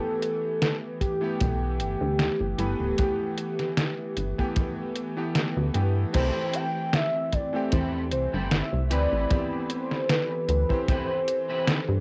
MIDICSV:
0, 0, Header, 1, 8, 480
1, 0, Start_track
1, 0, Key_signature, 1, "major"
1, 0, Tempo, 789474
1, 1819, Time_signature, 4, 2, 24, 8
1, 7298, End_track
2, 0, Start_track
2, 0, Title_t, "Soft synth lead"
2, 0, Program_c, 0, 80
2, 0, Note_on_c, 0, 69, 127
2, 375, Note_off_c, 0, 69, 0
2, 379, Note_on_c, 0, 69, 110
2, 464, Note_off_c, 0, 69, 0
2, 613, Note_on_c, 0, 67, 103
2, 3231, Note_off_c, 0, 67, 0
2, 3739, Note_on_c, 0, 72, 110
2, 3981, Note_on_c, 0, 79, 111
2, 3990, Note_off_c, 0, 72, 0
2, 4221, Note_on_c, 0, 76, 116
2, 4231, Note_off_c, 0, 79, 0
2, 4461, Note_on_c, 0, 74, 100
2, 4470, Note_off_c, 0, 76, 0
2, 4698, Note_off_c, 0, 74, 0
2, 4702, Note_on_c, 0, 72, 96
2, 4787, Note_off_c, 0, 72, 0
2, 4938, Note_on_c, 0, 72, 95
2, 5181, Note_on_c, 0, 76, 109
2, 5190, Note_off_c, 0, 72, 0
2, 5418, Note_on_c, 0, 74, 101
2, 5427, Note_off_c, 0, 76, 0
2, 5895, Note_on_c, 0, 72, 92
2, 5905, Note_off_c, 0, 74, 0
2, 6134, Note_on_c, 0, 71, 91
2, 6144, Note_off_c, 0, 72, 0
2, 6373, Note_off_c, 0, 71, 0
2, 6377, Note_on_c, 0, 71, 86
2, 6617, Note_on_c, 0, 72, 85
2, 6626, Note_off_c, 0, 71, 0
2, 7298, Note_off_c, 0, 72, 0
2, 7298, End_track
3, 0, Start_track
3, 0, Title_t, "Clean electric guitar"
3, 0, Program_c, 1, 27
3, 3732, Note_on_c, 1, 60, 108
3, 3737, Note_on_c, 1, 67, 104
3, 3738, Note_on_c, 1, 64, 100
3, 3740, Note_on_c, 1, 69, 127
3, 4041, Note_off_c, 1, 60, 0
3, 4042, Note_off_c, 1, 64, 0
3, 4043, Note_off_c, 1, 67, 0
3, 4045, Note_off_c, 1, 69, 0
3, 4695, Note_on_c, 1, 60, 88
3, 4698, Note_on_c, 1, 64, 83
3, 4699, Note_on_c, 1, 67, 78
3, 4702, Note_on_c, 1, 69, 98
3, 4882, Note_off_c, 1, 60, 0
3, 4883, Note_off_c, 1, 64, 0
3, 4884, Note_off_c, 1, 67, 0
3, 4886, Note_off_c, 1, 69, 0
3, 5066, Note_on_c, 1, 60, 89
3, 5069, Note_on_c, 1, 67, 77
3, 5070, Note_on_c, 1, 64, 84
3, 5072, Note_on_c, 1, 69, 96
3, 5242, Note_off_c, 1, 60, 0
3, 5244, Note_off_c, 1, 64, 0
3, 5244, Note_off_c, 1, 67, 0
3, 5245, Note_off_c, 1, 69, 0
3, 5416, Note_on_c, 1, 60, 95
3, 5420, Note_on_c, 1, 64, 87
3, 5420, Note_on_c, 1, 67, 86
3, 5423, Note_on_c, 1, 71, 110
3, 6093, Note_off_c, 1, 60, 0
3, 6095, Note_off_c, 1, 64, 0
3, 6096, Note_off_c, 1, 67, 0
3, 6097, Note_off_c, 1, 71, 0
3, 6617, Note_on_c, 1, 60, 91
3, 6621, Note_on_c, 1, 67, 82
3, 6622, Note_on_c, 1, 64, 88
3, 6624, Note_on_c, 1, 71, 99
3, 6803, Note_off_c, 1, 60, 0
3, 6804, Note_off_c, 1, 64, 0
3, 6805, Note_off_c, 1, 67, 0
3, 6807, Note_off_c, 1, 71, 0
3, 6986, Note_on_c, 1, 60, 94
3, 6990, Note_on_c, 1, 64, 86
3, 6990, Note_on_c, 1, 67, 79
3, 6993, Note_on_c, 1, 71, 100
3, 7162, Note_off_c, 1, 60, 0
3, 7163, Note_off_c, 1, 64, 0
3, 7165, Note_off_c, 1, 67, 0
3, 7166, Note_off_c, 1, 71, 0
3, 7298, End_track
4, 0, Start_track
4, 0, Title_t, "Electric grand piano"
4, 0, Program_c, 2, 2
4, 0, Control_c, 2, 64, 127
4, 0, Note_on_c, 2, 52, 84
4, 0, Note_on_c, 2, 57, 79
4, 0, Note_on_c, 2, 59, 77
4, 0, Note_on_c, 2, 67, 95
4, 710, Note_off_c, 2, 52, 0
4, 713, Note_off_c, 2, 57, 0
4, 716, Note_off_c, 2, 59, 0
4, 720, Note_off_c, 2, 67, 0
4, 735, Note_on_c, 2, 52, 88
4, 741, Note_on_c, 2, 57, 85
4, 747, Note_on_c, 2, 59, 78
4, 753, Note_on_c, 2, 67, 100
4, 1545, Note_off_c, 2, 52, 0
4, 1548, Note_off_c, 2, 57, 0
4, 1551, Note_off_c, 2, 59, 0
4, 1554, Note_off_c, 2, 67, 0
4, 1569, Note_on_c, 2, 52, 90
4, 1573, Note_on_c, 2, 57, 81
4, 1576, Note_on_c, 2, 59, 83
4, 1579, Note_on_c, 2, 71, 96
4, 1787, Note_off_c, 2, 52, 0
4, 1789, Note_off_c, 2, 57, 0
4, 1791, Note_off_c, 2, 59, 0
4, 1793, Note_off_c, 2, 71, 0
4, 1810, Note_on_c, 2, 52, 82
4, 1814, Note_on_c, 2, 57, 75
4, 1816, Note_on_c, 2, 59, 76
4, 1819, Note_on_c, 2, 67, 91
4, 1897, Note_off_c, 2, 52, 0
4, 1898, Note_off_c, 2, 57, 0
4, 1900, Note_off_c, 2, 59, 0
4, 1901, Note_off_c, 2, 67, 0
4, 2664, Note_on_c, 2, 52, 89
4, 2667, Note_on_c, 2, 57, 81
4, 2670, Note_on_c, 2, 59, 79
4, 2674, Note_on_c, 2, 67, 102
4, 3121, Note_off_c, 2, 52, 0
4, 3122, Note_off_c, 2, 57, 0
4, 3124, Note_off_c, 2, 59, 0
4, 3125, Note_off_c, 2, 67, 0
4, 3141, Note_on_c, 2, 52, 86
4, 3144, Note_on_c, 2, 57, 87
4, 3147, Note_on_c, 2, 59, 80
4, 3150, Note_on_c, 2, 67, 99
4, 3468, Note_off_c, 2, 52, 0
4, 3470, Note_off_c, 2, 57, 0
4, 3471, Note_off_c, 2, 59, 0
4, 3473, Note_off_c, 2, 67, 0
4, 3489, Note_on_c, 2, 52, 85
4, 3491, Note_on_c, 2, 57, 83
4, 3495, Note_on_c, 2, 59, 77
4, 3498, Note_on_c, 2, 67, 93
4, 3707, Note_off_c, 2, 52, 0
4, 3709, Note_off_c, 2, 57, 0
4, 3711, Note_off_c, 2, 59, 0
4, 3712, Note_off_c, 2, 67, 0
4, 3727, Note_on_c, 2, 52, 88
4, 3733, Note_on_c, 2, 57, 80
4, 3740, Note_on_c, 2, 60, 78
4, 3745, Control_c, 2, 64, 0
4, 3745, Note_on_c, 2, 67, 94
4, 3857, Control_c, 2, 64, 127
4, 4552, Note_off_c, 2, 52, 0
4, 4555, Note_off_c, 2, 57, 0
4, 4559, Note_off_c, 2, 60, 0
4, 4561, Note_off_c, 2, 67, 0
4, 4577, Note_on_c, 2, 52, 87
4, 4585, Note_on_c, 2, 57, 80
4, 4590, Note_on_c, 2, 60, 86
4, 4596, Note_on_c, 2, 67, 106
4, 5386, Note_off_c, 2, 52, 0
4, 5390, Note_off_c, 2, 57, 0
4, 5393, Note_off_c, 2, 60, 0
4, 5396, Note_off_c, 2, 67, 0
4, 5413, Note_on_c, 2, 52, 89
4, 5420, Note_on_c, 2, 60, 82
4, 5422, Note_on_c, 2, 71, 96
4, 5427, Control_c, 2, 64, 0
4, 5523, Control_c, 2, 64, 127
4, 5629, Note_off_c, 2, 52, 0
4, 5633, Note_off_c, 2, 60, 0
4, 5634, Note_off_c, 2, 71, 0
4, 5651, Note_on_c, 2, 52, 85
4, 5653, Note_on_c, 2, 59, 82
4, 5658, Note_on_c, 2, 60, 77
4, 5662, Note_on_c, 2, 67, 93
4, 5737, Note_off_c, 2, 52, 0
4, 5738, Note_off_c, 2, 59, 0
4, 5741, Note_off_c, 2, 60, 0
4, 5743, Note_off_c, 2, 67, 0
4, 6500, Note_on_c, 2, 52, 88
4, 6507, Note_on_c, 2, 72, 79
4, 6513, Note_on_c, 2, 60, 82
4, 6519, Note_on_c, 2, 67, 94
4, 7298, Note_off_c, 2, 52, 0
4, 7298, Note_off_c, 2, 60, 0
4, 7298, Note_off_c, 2, 67, 0
4, 7298, Note_off_c, 2, 72, 0
4, 7298, End_track
5, 0, Start_track
5, 0, Title_t, "Ambient pad"
5, 0, Program_c, 3, 92
5, 0, Note_on_c, 3, 52, 74
5, 0, Note_on_c, 3, 57, 69
5, 0, Note_on_c, 3, 67, 81
5, 0, Note_on_c, 3, 71, 68
5, 3711, Note_off_c, 3, 52, 0
5, 3713, Note_off_c, 3, 57, 0
5, 3713, Note_off_c, 3, 71, 0
5, 3714, Note_off_c, 3, 67, 0
5, 3735, Note_on_c, 3, 57, 70
5, 3736, Note_on_c, 3, 52, 79
5, 3736, Note_on_c, 3, 60, 74
5, 3736, Note_on_c, 3, 67, 85
5, 5400, Note_off_c, 3, 52, 0
5, 5400, Note_off_c, 3, 57, 0
5, 5400, Note_off_c, 3, 60, 0
5, 5415, Note_on_c, 3, 69, 70
5, 5416, Note_on_c, 3, 52, 81
5, 7298, Note_off_c, 3, 52, 0
5, 7298, Note_off_c, 3, 67, 0
5, 7298, Note_off_c, 3, 69, 0
5, 7298, End_track
6, 0, Start_track
6, 0, Title_t, "Analog synth bass"
6, 0, Program_c, 4, 38
6, 858, Note_on_c, 4, 35, 87
6, 1093, Note_on_c, 4, 31, 100
6, 1102, Note_off_c, 4, 35, 0
6, 1192, Note_off_c, 4, 31, 0
6, 1223, Note_on_c, 4, 38, 92
6, 1398, Note_off_c, 4, 38, 0
6, 1462, Note_on_c, 4, 31, 84
6, 1546, Note_off_c, 4, 31, 0
6, 1572, Note_on_c, 4, 31, 87
6, 1672, Note_off_c, 4, 31, 0
6, 1703, Note_on_c, 4, 26, 78
6, 1787, Note_off_c, 4, 26, 0
6, 2534, Note_on_c, 4, 31, 92
6, 2633, Note_off_c, 4, 31, 0
6, 3386, Note_on_c, 4, 38, 101
6, 3469, Note_off_c, 4, 38, 0
6, 3495, Note_on_c, 4, 43, 85
6, 3680, Note_off_c, 4, 43, 0
6, 3736, Note_on_c, 4, 36, 97
6, 3834, Note_off_c, 4, 36, 0
6, 4698, Note_on_c, 4, 40, 82
6, 4936, Note_on_c, 4, 36, 105
6, 4945, Note_off_c, 4, 40, 0
6, 5034, Note_off_c, 4, 36, 0
6, 5068, Note_on_c, 4, 31, 94
6, 5240, Note_off_c, 4, 31, 0
6, 5307, Note_on_c, 4, 36, 86
6, 5417, Note_on_c, 4, 38, 85
6, 5426, Note_off_c, 4, 36, 0
6, 5515, Note_off_c, 4, 38, 0
6, 5547, Note_on_c, 4, 33, 79
6, 5629, Note_off_c, 4, 33, 0
6, 6375, Note_on_c, 4, 38, 95
6, 6474, Note_off_c, 4, 38, 0
6, 7227, Note_on_c, 4, 43, 87
6, 7298, Note_off_c, 4, 43, 0
6, 7298, End_track
7, 0, Start_track
7, 0, Title_t, "Muted clean electric guitar strokes"
7, 4345, Note_on_c, 9, 29, 92
7, 4406, Note_off_c, 9, 29, 0
7, 4455, Note_on_c, 9, 29, 36
7, 4516, Note_off_c, 9, 29, 0
7, 6267, Note_on_c, 9, 29, 95
7, 6328, Note_off_c, 9, 29, 0
7, 6377, Note_on_c, 9, 29, 35
7, 6438, Note_off_c, 9, 29, 0
7, 7298, End_track
8, 0, Start_track
8, 0, Title_t, "Drums"
8, 135, Note_on_c, 9, 42, 63
8, 196, Note_off_c, 9, 42, 0
8, 375, Note_on_c, 9, 38, 107
8, 375, Note_on_c, 9, 42, 76
8, 436, Note_off_c, 9, 38, 0
8, 436, Note_off_c, 9, 42, 0
8, 614, Note_on_c, 9, 36, 61
8, 615, Note_on_c, 9, 42, 59
8, 675, Note_off_c, 9, 36, 0
8, 676, Note_off_c, 9, 42, 0
8, 854, Note_on_c, 9, 42, 71
8, 858, Note_on_c, 9, 36, 108
8, 915, Note_off_c, 9, 42, 0
8, 919, Note_off_c, 9, 36, 0
8, 1093, Note_on_c, 9, 42, 62
8, 1154, Note_off_c, 9, 42, 0
8, 1332, Note_on_c, 9, 38, 99
8, 1332, Note_on_c, 9, 42, 71
8, 1393, Note_off_c, 9, 38, 0
8, 1393, Note_off_c, 9, 42, 0
8, 1572, Note_on_c, 9, 42, 59
8, 1633, Note_off_c, 9, 42, 0
8, 1812, Note_on_c, 9, 42, 74
8, 1817, Note_on_c, 9, 36, 109
8, 1873, Note_off_c, 9, 42, 0
8, 1878, Note_off_c, 9, 36, 0
8, 2052, Note_on_c, 9, 42, 66
8, 2113, Note_off_c, 9, 42, 0
8, 2183, Note_on_c, 9, 38, 34
8, 2183, Note_on_c, 9, 42, 37
8, 2244, Note_off_c, 9, 38, 0
8, 2244, Note_off_c, 9, 42, 0
8, 2293, Note_on_c, 9, 38, 113
8, 2293, Note_on_c, 9, 42, 80
8, 2354, Note_off_c, 9, 38, 0
8, 2354, Note_off_c, 9, 42, 0
8, 2533, Note_on_c, 9, 42, 64
8, 2593, Note_off_c, 9, 42, 0
8, 2668, Note_on_c, 9, 36, 58
8, 2729, Note_off_c, 9, 36, 0
8, 2772, Note_on_c, 9, 42, 75
8, 2776, Note_on_c, 9, 36, 107
8, 2833, Note_off_c, 9, 42, 0
8, 2837, Note_off_c, 9, 36, 0
8, 3013, Note_on_c, 9, 42, 66
8, 3074, Note_off_c, 9, 42, 0
8, 3253, Note_on_c, 9, 38, 107
8, 3253, Note_on_c, 9, 42, 77
8, 3314, Note_off_c, 9, 38, 0
8, 3314, Note_off_c, 9, 42, 0
8, 3492, Note_on_c, 9, 42, 66
8, 3553, Note_off_c, 9, 42, 0
8, 3733, Note_on_c, 9, 42, 78
8, 3733, Note_on_c, 9, 49, 97
8, 3737, Note_on_c, 9, 36, 102
8, 3794, Note_off_c, 9, 42, 0
8, 3794, Note_off_c, 9, 49, 0
8, 3798, Note_off_c, 9, 36, 0
8, 3973, Note_on_c, 9, 42, 73
8, 4034, Note_off_c, 9, 42, 0
8, 4214, Note_on_c, 9, 38, 119
8, 4214, Note_on_c, 9, 42, 79
8, 4275, Note_off_c, 9, 38, 0
8, 4275, Note_off_c, 9, 42, 0
8, 4454, Note_on_c, 9, 42, 66
8, 4456, Note_on_c, 9, 36, 56
8, 4515, Note_off_c, 9, 42, 0
8, 4517, Note_off_c, 9, 36, 0
8, 4693, Note_on_c, 9, 42, 82
8, 4699, Note_on_c, 9, 36, 108
8, 4754, Note_off_c, 9, 42, 0
8, 4759, Note_off_c, 9, 36, 0
8, 4934, Note_on_c, 9, 42, 69
8, 4994, Note_off_c, 9, 42, 0
8, 5176, Note_on_c, 9, 38, 117
8, 5176, Note_on_c, 9, 42, 79
8, 5236, Note_off_c, 9, 38, 0
8, 5236, Note_off_c, 9, 42, 0
8, 5416, Note_on_c, 9, 42, 68
8, 5477, Note_off_c, 9, 42, 0
8, 5657, Note_on_c, 9, 42, 80
8, 5660, Note_on_c, 9, 36, 122
8, 5718, Note_off_c, 9, 42, 0
8, 5721, Note_off_c, 9, 36, 0
8, 5895, Note_on_c, 9, 42, 69
8, 5956, Note_off_c, 9, 42, 0
8, 6026, Note_on_c, 9, 38, 38
8, 6087, Note_off_c, 9, 38, 0
8, 6136, Note_on_c, 9, 38, 121
8, 6136, Note_on_c, 9, 42, 86
8, 6197, Note_off_c, 9, 38, 0
8, 6197, Note_off_c, 9, 42, 0
8, 6375, Note_on_c, 9, 42, 66
8, 6436, Note_off_c, 9, 42, 0
8, 6506, Note_on_c, 9, 36, 59
8, 6567, Note_off_c, 9, 36, 0
8, 6618, Note_on_c, 9, 36, 119
8, 6618, Note_on_c, 9, 42, 85
8, 6678, Note_off_c, 9, 42, 0
8, 6679, Note_off_c, 9, 36, 0
8, 6858, Note_on_c, 9, 42, 69
8, 6919, Note_off_c, 9, 42, 0
8, 7099, Note_on_c, 9, 38, 119
8, 7099, Note_on_c, 9, 42, 80
8, 7160, Note_off_c, 9, 38, 0
8, 7160, Note_off_c, 9, 42, 0
8, 7298, End_track
0, 0, End_of_file